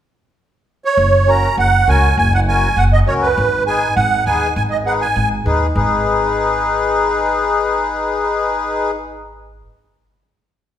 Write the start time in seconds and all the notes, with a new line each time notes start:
0.85 C#5
0.97 F#1
1.27 C#4 F#4 A#4 A#5
1.57 F#1 F#5
1.87 C#2 C#4 F#4 A#4 G#5
2.17 F#1 G#5
2.34 F#5
2.48 C#4 F#4 A#4 G#5
2.77 F#1 F#5
2.93 D#5
3.07 C#2 C#4 F#4 A#4 C#5
3.22 B4
3.37 G#1
3.67 D#4 G#4 B4 G#5
3.96 G#1 F#5
4.26 D#2 D#4 G#4 B4 G#5
4.56 G#1 G#5
4.70 D#5
4.86 D#4 G#4 B4 F#5
5.01 G#5
5.16 G#1
5.45 D#2 D#4 G#4 B4
5.75 G#1 D#4 G#4 B4